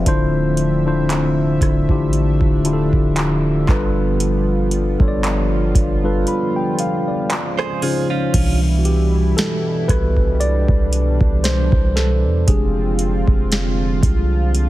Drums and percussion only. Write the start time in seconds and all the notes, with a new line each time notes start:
0.06 kick, closed hi-hat
0.57 closed hi-hat
1.10 clap, closed hi-hat
1.61 kick, cross-stick, closed hi-hat
1.89 kick
2.13 closed hi-hat
2.41 kick
2.65 closed hi-hat
2.93 kick
3.16 clap, closed hi-hat
3.68 kick, clap
4.20 closed hi-hat
4.71 closed hi-hat
5.00 kick
5.24 clap, closed hi-hat
5.75 kick, closed hi-hat
6.27 closed hi-hat
6.79 closed hi-hat
7.30 clap, closed hi-hat
7.59 cross-stick
7.82 open hi-hat
8.34 kick, closed hi-hat, crash
8.85 closed hi-hat
9.38 snare, closed hi-hat
9.89 kick, cross-stick, closed hi-hat
10.17 kick
10.41 closed hi-hat
10.68 kick
10.93 closed hi-hat
11.21 kick
11.44 snare, closed hi-hat
11.72 kick
11.97 snare
12.48 kick, closed hi-hat
12.99 closed hi-hat
13.28 kick
13.52 snare, closed hi-hat
14.03 kick, closed hi-hat
14.55 closed hi-hat